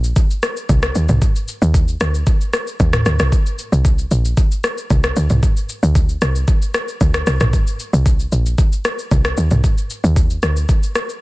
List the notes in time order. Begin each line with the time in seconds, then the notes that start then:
Already playing: A#1
0.04 shaker
0.16 kick, shaker
0.30 shaker
0.43 cross-stick, shaker
0.57 shaker
0.69 C2, kick, shaker
0.83 cross-stick, shaker
0.95 D#2, shaker
1.09 C2, mid tom, shaker
1.22 kick, shaker
1.36 shaker
1.48 shaker
1.62 D#2, shaker
1.74 kick, shaker
1.88 shaker
2.01 D2, cross-stick, shaker
2.14 shaker
2.27 kick, shaker
2.41 shaker
2.53 cross-stick, shaker
2.67 shaker
2.80 D#2, kick, shaker
2.93 cross-stick, mid tom, shaker
3.06 D2, cross-stick, shaker
3.19 C2, cross-stick, shaker
3.32 kick, shaker
3.46 shaker
3.59 shaker
3.72 C2, shaker
3.85 kick, shaker
3.98 shaker
4.11 A#1, shaker
4.25 shaker
4.37 kick, shaker
4.52 shaker
4.64 cross-stick, shaker
4.78 shaker
4.90 C2, kick, shaker
5.04 cross-stick, shaker
5.16 D2, shaker
5.30 C2, mid tom, shaker
5.43 kick, shaker
5.57 shaker
5.69 shaker
5.83 D2, shaker
5.95 kick, shaker
6.09 shaker
6.22 C2, cross-stick, shaker
6.35 shaker
6.48 kick, shaker
6.62 shaker
6.74 cross-stick, shaker
6.88 shaker
7.01 D2, kick, shaker
7.14 cross-stick, shaker
7.27 C2, cross-stick, shaker
7.40 A#1, cross-stick, mid tom, shaker
7.53 kick, shaker
7.67 shaker
7.80 shaker
7.93 C2, shaker
8.06 kick, shaker
8.20 shaker
8.32 A#1, shaker
8.46 shaker
8.58 kick, shaker
8.72 shaker
8.85 cross-stick, shaker
8.99 shaker
9.11 C2, kick, shaker
9.25 cross-stick, shaker
9.37 D#2, shaker
9.51 C2, mid tom, shaker
9.64 kick, shaker
9.78 shaker
9.90 shaker
10.04 D#2, shaker
10.16 kick, shaker
10.30 shaker
10.43 D2, cross-stick, shaker
10.56 shaker
10.69 kick, shaker
10.83 shaker
10.95 cross-stick, shaker
11.09 shaker